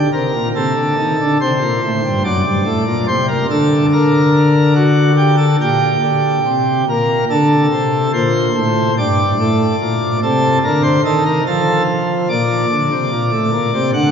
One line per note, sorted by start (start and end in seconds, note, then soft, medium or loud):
0.13 0.31 C3 medium
0.13 0.48 A#4 medium
0.34 0.52 A#2 medium
0.56 0.73 C3 medium
0.56 1.37 A4 medium
0.76 0.94 D3 medium
0.98 1.15 D#3 medium
1.20 1.37 D3 medium
1.41 1.58 C3 medium
1.41 2.23 C5 loud
1.62 1.79 A#2 medium
1.83 2.01 A2 medium
2.05 2.22 G2 medium
2.24 2.42 F#2 medium
2.24 3.06 D5 loud
2.45 2.63 G2 medium
2.65 2.83 A2 medium
2.87 3.05 A#2 medium
3.08 3.44 C3 medium
3.08 3.26 C5 loud
3.28 3.47 A#4 medium
3.50 5.56 D3 medium
3.50 3.86 A4 loud
3.93 4.74 A#4 medium
4.76 5.11 F#4 medium
5.17 5.35 G4 medium
5.38 5.56 A4 medium
5.60 5.96 A#2 medium
5.60 6.85 G4 medium
6.02 6.39 D3 medium
6.46 6.82 C3 medium
6.89 7.24 A#2 medium
6.89 7.25 A#4 medium
7.30 7.66 D3 medium
7.30 8.11 A4 medium
7.72 8.07 C3 medium
8.14 8.49 A#2 medium
8.14 8.94 C5 loud
8.55 8.91 A2 medium
8.98 9.33 G2 medium
8.98 10.20 D5 loud
9.40 9.75 A2 medium
9.81 10.17 A#2 medium
10.23 10.59 C3 medium
10.23 10.58 A4 medium
10.64 11.00 D3 medium
10.64 10.82 A#4 medium
10.83 11.02 C5 loud
11.04 11.40 D#3 medium
11.04 11.23 A4 medium
11.26 11.44 A#4 medium
11.47 12.28 F3 medium
11.47 11.83 A4 medium
12.29 12.65 A#2 medium
12.29 13.90 D5 loud
12.71 12.89 D3 medium
12.91 13.09 C3 medium
13.12 13.30 A#2 medium
13.31 13.50 A2 medium
13.52 13.71 A#2 medium
13.74 13.92 C3 medium
13.94 14.11 D3 medium
13.94 14.11 F#5 loud